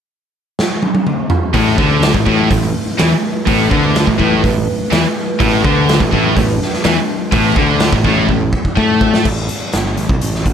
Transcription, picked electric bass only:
0, 0, Header, 1, 3, 480
1, 0, Start_track
1, 0, Tempo, 481928
1, 1540, Time_signature, 4, 2, 24, 8
1, 10491, End_track
2, 0, Start_track
2, 0, Title_t, "Picked electric bass"
2, 0, Program_c, 0, 34
2, 1541, Note_on_c, 0, 33, 86
2, 1763, Note_off_c, 0, 33, 0
2, 1783, Note_on_c, 0, 38, 92
2, 2116, Note_off_c, 0, 38, 0
2, 2143, Note_on_c, 0, 33, 68
2, 2252, Note_off_c, 0, 33, 0
2, 2257, Note_on_c, 0, 33, 98
2, 2481, Note_off_c, 0, 33, 0
2, 2499, Note_on_c, 0, 33, 80
2, 2722, Note_off_c, 0, 33, 0
2, 3006, Note_on_c, 0, 40, 93
2, 3105, Note_off_c, 0, 40, 0
2, 3461, Note_on_c, 0, 33, 89
2, 3683, Note_off_c, 0, 33, 0
2, 3701, Note_on_c, 0, 38, 77
2, 4034, Note_off_c, 0, 38, 0
2, 4059, Note_on_c, 0, 33, 81
2, 4170, Note_off_c, 0, 33, 0
2, 4181, Note_on_c, 0, 33, 97
2, 4403, Note_off_c, 0, 33, 0
2, 4423, Note_on_c, 0, 33, 71
2, 4643, Note_off_c, 0, 33, 0
2, 4905, Note_on_c, 0, 40, 85
2, 5013, Note_off_c, 0, 40, 0
2, 5388, Note_on_c, 0, 33, 92
2, 5606, Note_off_c, 0, 33, 0
2, 5627, Note_on_c, 0, 38, 83
2, 5957, Note_off_c, 0, 38, 0
2, 5978, Note_on_c, 0, 33, 78
2, 6089, Note_off_c, 0, 33, 0
2, 6109, Note_on_c, 0, 33, 97
2, 6327, Note_off_c, 0, 33, 0
2, 6345, Note_on_c, 0, 33, 80
2, 6564, Note_off_c, 0, 33, 0
2, 6828, Note_on_c, 0, 40, 91
2, 6934, Note_off_c, 0, 40, 0
2, 7299, Note_on_c, 0, 33, 92
2, 7521, Note_off_c, 0, 33, 0
2, 7533, Note_on_c, 0, 38, 85
2, 7870, Note_off_c, 0, 38, 0
2, 7895, Note_on_c, 0, 33, 75
2, 8008, Note_off_c, 0, 33, 0
2, 8024, Note_on_c, 0, 33, 100
2, 8244, Note_off_c, 0, 33, 0
2, 8258, Note_on_c, 0, 33, 81
2, 8481, Note_off_c, 0, 33, 0
2, 8737, Note_on_c, 0, 45, 92
2, 9184, Note_off_c, 0, 45, 0
2, 9217, Note_on_c, 0, 33, 81
2, 9442, Note_off_c, 0, 33, 0
2, 9706, Note_on_c, 0, 31, 86
2, 9927, Note_off_c, 0, 31, 0
2, 9939, Note_on_c, 0, 33, 70
2, 10046, Note_off_c, 0, 33, 0
2, 10052, Note_on_c, 0, 36, 84
2, 10168, Note_off_c, 0, 36, 0
2, 10189, Note_on_c, 0, 33, 67
2, 10409, Note_off_c, 0, 33, 0
2, 10422, Note_on_c, 0, 31, 85
2, 10491, Note_off_c, 0, 31, 0
2, 10491, End_track
3, 0, Start_track
3, 0, Title_t, "Muted picked electric bass strokes"
3, 9471, Note_on_c, 9, 29, 33
3, 9571, Note_off_c, 9, 29, 0
3, 10491, End_track
0, 0, End_of_file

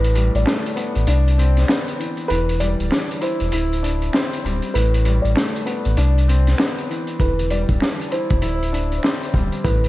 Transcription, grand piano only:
0, 0, Header, 1, 2, 480
1, 0, Start_track
1, 0, Tempo, 612245
1, 1802, Time_signature, 4, 2, 24, 8
1, 7751, End_track
2, 0, Start_track
2, 0, Title_t, "Grand piano"
2, 0, Program_c, 0, 0
2, 0, Note_on_c, 0, 45, 91
2, 13, Control_c, 0, 64, 127
2, 121, Note_on_c, 0, 55, 76
2, 353, Note_on_c, 0, 57, 86
2, 594, Note_on_c, 0, 59, 85
2, 838, Note_off_c, 0, 57, 0
2, 838, Note_off_c, 0, 59, 0
2, 841, Note_on_c, 0, 62, 98
2, 842, Note_off_c, 0, 55, 0
2, 843, Note_off_c, 0, 45, 0
2, 853, Control_c, 0, 64, 0
2, 975, Control_c, 0, 64, 127
2, 1082, Note_on_c, 0, 60, 84
2, 1315, Note_on_c, 0, 59, 85
2, 1560, Note_on_c, 0, 52, 75
2, 1795, Note_off_c, 0, 52, 0
2, 1799, Note_off_c, 0, 59, 0
2, 1802, Note_off_c, 0, 60, 0
2, 1802, Note_off_c, 0, 62, 0
2, 1806, Note_on_c, 0, 52, 93
2, 1813, Control_c, 0, 64, 0
2, 1955, Control_c, 0, 64, 127
2, 2045, Note_on_c, 0, 55, 82
2, 2279, Note_on_c, 0, 62, 82
2, 2516, Note_on_c, 0, 64, 90
2, 2748, Note_off_c, 0, 64, 0
2, 2760, Note_on_c, 0, 64, 97
2, 2761, Note_off_c, 0, 62, 0
2, 2763, Note_off_c, 0, 55, 0
2, 2764, Note_off_c, 0, 52, 0
2, 2773, Control_c, 0, 64, 0
2, 2916, Control_c, 0, 64, 127
2, 3000, Note_on_c, 0, 62, 79
2, 3236, Note_on_c, 0, 60, 87
2, 3490, Note_on_c, 0, 55, 80
2, 3719, Note_off_c, 0, 60, 0
2, 3721, Note_off_c, 0, 62, 0
2, 3721, Note_off_c, 0, 64, 0
2, 3724, Note_on_c, 0, 45, 92
2, 3726, Note_off_c, 0, 55, 0
2, 3733, Control_c, 0, 64, 0
2, 3863, Control_c, 0, 64, 127
2, 3962, Note_on_c, 0, 55, 80
2, 4194, Note_on_c, 0, 57, 88
2, 4438, Note_on_c, 0, 59, 84
2, 4678, Note_off_c, 0, 57, 0
2, 4680, Note_off_c, 0, 59, 0
2, 4682, Note_off_c, 0, 55, 0
2, 4683, Note_off_c, 0, 45, 0
2, 4684, Note_on_c, 0, 62, 97
2, 4691, Control_c, 0, 64, 0
2, 4849, Control_c, 0, 64, 127
2, 4923, Note_on_c, 0, 60, 84
2, 5157, Note_on_c, 0, 59, 81
2, 5401, Note_on_c, 0, 52, 76
2, 5636, Note_off_c, 0, 52, 0
2, 5640, Note_off_c, 0, 59, 0
2, 5643, Note_off_c, 0, 60, 0
2, 5643, Note_off_c, 0, 62, 0
2, 5648, Note_on_c, 0, 52, 90
2, 5652, Control_c, 0, 64, 0
2, 5796, Control_c, 0, 64, 127
2, 5885, Note_on_c, 0, 55, 82
2, 6121, Note_on_c, 0, 62, 81
2, 6358, Note_on_c, 0, 64, 86
2, 6589, Note_off_c, 0, 64, 0
2, 6600, Note_on_c, 0, 64, 97
2, 6602, Note_off_c, 0, 62, 0
2, 6604, Note_off_c, 0, 55, 0
2, 6605, Note_off_c, 0, 52, 0
2, 6613, Control_c, 0, 64, 0
2, 6735, Control_c, 0, 64, 127
2, 6841, Note_on_c, 0, 62, 82
2, 7078, Note_on_c, 0, 60, 86
2, 7331, Note_on_c, 0, 55, 83
2, 7560, Note_off_c, 0, 60, 0
2, 7561, Note_off_c, 0, 64, 0
2, 7562, Note_off_c, 0, 62, 0
2, 7567, Note_off_c, 0, 55, 0
2, 7567, Note_on_c, 0, 45, 91
2, 7571, Control_c, 0, 64, 0
2, 7723, Control_c, 0, 64, 127
2, 7751, Note_off_c, 0, 45, 0
2, 7751, End_track
0, 0, End_of_file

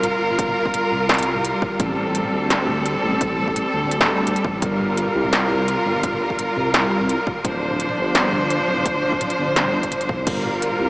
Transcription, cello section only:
0, 0, Header, 1, 2, 480
1, 0, Start_track
1, 0, Key_signature, -2, "minor"
1, 0, Tempo, 352941
1, 526, Time_signature, 4, 2, 24, 8
1, 14817, End_track
2, 0, Start_track
2, 0, Title_t, "Cello section"
2, 0, Program_c, 0, 48
2, 0, Note_on_c, 0, 55, 84
2, 0, Note_on_c, 0, 65, 80
2, 0, Note_on_c, 0, 70, 93
2, 2407, Note_off_c, 0, 65, 0
2, 2407, Note_off_c, 0, 70, 0
2, 2443, Note_on_c, 0, 60, 78
2, 2444, Note_on_c, 0, 69, 91
2, 6246, Note_off_c, 0, 60, 0
2, 6246, Note_off_c, 0, 69, 0
2, 6288, Note_on_c, 0, 65, 75
2, 6288, Note_on_c, 0, 70, 92
2, 10071, Note_off_c, 0, 55, 0
2, 10089, Note_off_c, 0, 65, 0
2, 10089, Note_off_c, 0, 70, 0
2, 10125, Note_on_c, 0, 62, 78
2, 10125, Note_on_c, 0, 72, 92
2, 10126, Note_on_c, 0, 53, 89
2, 13927, Note_off_c, 0, 62, 0
2, 13927, Note_off_c, 0, 72, 0
2, 13928, Note_off_c, 0, 53, 0
2, 13966, Note_on_c, 0, 70, 91
2, 13968, Note_on_c, 0, 55, 82
2, 13968, Note_on_c, 0, 65, 73
2, 14817, Note_off_c, 0, 55, 0
2, 14817, Note_off_c, 0, 65, 0
2, 14817, Note_off_c, 0, 70, 0
2, 14817, End_track
0, 0, End_of_file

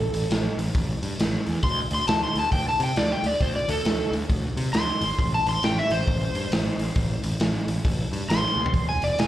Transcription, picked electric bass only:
0, 0, Header, 1, 2, 480
1, 0, Start_track
1, 0, Key_signature, 0, "minor"
1, 0, Tempo, 443131
1, 1774, Time_signature, 4, 2, 24, 8
1, 10046, End_track
2, 0, Start_track
2, 0, Title_t, "Picked electric bass"
2, 0, Program_c, 0, 34
2, 144, Note_on_c, 0, 33, 86
2, 259, Note_off_c, 0, 33, 0
2, 318, Note_on_c, 0, 33, 88
2, 508, Note_off_c, 0, 33, 0
2, 620, Note_on_c, 0, 33, 91
2, 737, Note_off_c, 0, 33, 0
2, 813, Note_on_c, 0, 33, 84
2, 998, Note_off_c, 0, 33, 0
2, 1104, Note_on_c, 0, 43, 77
2, 1219, Note_off_c, 0, 43, 0
2, 1287, Note_on_c, 0, 33, 84
2, 1474, Note_off_c, 0, 33, 0
2, 1593, Note_on_c, 0, 40, 80
2, 1706, Note_off_c, 0, 40, 0
2, 1768, Note_on_c, 0, 38, 86
2, 1955, Note_off_c, 0, 38, 0
2, 2068, Note_on_c, 0, 38, 81
2, 2182, Note_off_c, 0, 38, 0
2, 2253, Note_on_c, 0, 38, 88
2, 2438, Note_off_c, 0, 38, 0
2, 2551, Note_on_c, 0, 38, 89
2, 2664, Note_off_c, 0, 38, 0
2, 2730, Note_on_c, 0, 38, 84
2, 2916, Note_off_c, 0, 38, 0
2, 3026, Note_on_c, 0, 48, 93
2, 3141, Note_off_c, 0, 48, 0
2, 3209, Note_on_c, 0, 38, 88
2, 3395, Note_off_c, 0, 38, 0
2, 3505, Note_on_c, 0, 38, 84
2, 3620, Note_off_c, 0, 38, 0
2, 3690, Note_on_c, 0, 38, 84
2, 3876, Note_off_c, 0, 38, 0
2, 3989, Note_on_c, 0, 38, 84
2, 4103, Note_off_c, 0, 38, 0
2, 4166, Note_on_c, 0, 38, 88
2, 4353, Note_off_c, 0, 38, 0
2, 4459, Note_on_c, 0, 38, 85
2, 4576, Note_off_c, 0, 38, 0
2, 4653, Note_on_c, 0, 38, 85
2, 4838, Note_off_c, 0, 38, 0
2, 4946, Note_on_c, 0, 48, 97
2, 5061, Note_off_c, 0, 48, 0
2, 5128, Note_on_c, 0, 38, 86
2, 5315, Note_off_c, 0, 38, 0
2, 5425, Note_on_c, 0, 32, 84
2, 5540, Note_off_c, 0, 32, 0
2, 5619, Note_on_c, 0, 33, 86
2, 5802, Note_off_c, 0, 33, 0
2, 5912, Note_on_c, 0, 33, 83
2, 6025, Note_off_c, 0, 33, 0
2, 6091, Note_on_c, 0, 33, 96
2, 6277, Note_off_c, 0, 33, 0
2, 6395, Note_on_c, 0, 33, 86
2, 6507, Note_off_c, 0, 33, 0
2, 6580, Note_on_c, 0, 33, 99
2, 6763, Note_off_c, 0, 33, 0
2, 6875, Note_on_c, 0, 43, 93
2, 6988, Note_off_c, 0, 43, 0
2, 7053, Note_on_c, 0, 33, 94
2, 7238, Note_off_c, 0, 33, 0
2, 7346, Note_on_c, 0, 33, 76
2, 7461, Note_off_c, 0, 33, 0
2, 7538, Note_on_c, 0, 33, 94
2, 7722, Note_off_c, 0, 33, 0
2, 7831, Note_on_c, 0, 33, 77
2, 7944, Note_off_c, 0, 33, 0
2, 8017, Note_on_c, 0, 33, 90
2, 8202, Note_off_c, 0, 33, 0
2, 8312, Note_on_c, 0, 33, 82
2, 8425, Note_off_c, 0, 33, 0
2, 8502, Note_on_c, 0, 33, 87
2, 8685, Note_off_c, 0, 33, 0
2, 8793, Note_on_c, 0, 43, 87
2, 8907, Note_off_c, 0, 43, 0
2, 8976, Note_on_c, 0, 33, 84
2, 9161, Note_off_c, 0, 33, 0
2, 9272, Note_on_c, 0, 39, 79
2, 9385, Note_off_c, 0, 39, 0
2, 9463, Note_on_c, 0, 28, 84
2, 9646, Note_off_c, 0, 28, 0
2, 9758, Note_on_c, 0, 28, 88
2, 9870, Note_off_c, 0, 28, 0
2, 9943, Note_on_c, 0, 28, 91
2, 10046, Note_off_c, 0, 28, 0
2, 10046, End_track
0, 0, End_of_file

